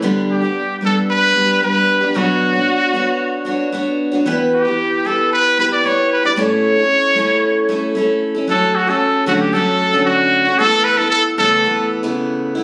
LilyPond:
<<
  \new Staff \with { instrumentName = "Trumpet" } { \time 4/4 \key d \major \tempo 4 = 114 r8 g'4 a'8 b'4 b'4 | fis'2. r4 | r8 g'4 a'8 b'8 b'16 d''16 cis''8 b'16 d''16 | cis''2. r4 |
a'8 fis'16 a'8. fis'16 g'16 a'4 fis'4 | a'8 b'16 a'16 a'8 a'4 r4. | }
  \new Staff \with { instrumentName = "Steel-string acoustic guitar" } { \time 4/4 \key d \major <g, d g b d' g'>8. <g b d' g'>8. <g b d' g'>4 <g b d' g'>8 <g b d' g'>8. <g b d' g'>16 | <b, fis b d' fis' cis''>8. <b d' fis' cis''>8. <b d' fis' cis''>4 <b d' fis' cis''>8 <b d' fis' cis''>8. <b d' fis' cis''>16 | <e b e' g' b'>8. <e' g' b'>8. <b e' g' b'>4 <b e' g' b'>8 <b e' g' b'>8. <e' g' b'>16 | <a, a cis' e' a'>8. <cis' e' a'>8. <a cis' e' a'>4 <a cis' e' a'>8 <a cis' e' a'>8. <cis' e' a'>16 |
<fis a cis' fis'>8. <a cis' fis'>8. <d fis a cis' fis'>8 <fis a cis' fis'>8. <d fis a cis' fis'>4 <a cis' fis'>16 | <e a b e'>8. <a b e'>8. <cis e a b e'>8 <e a b e'>8. <cis e a b e'>4 <a b e'>16 | }
>>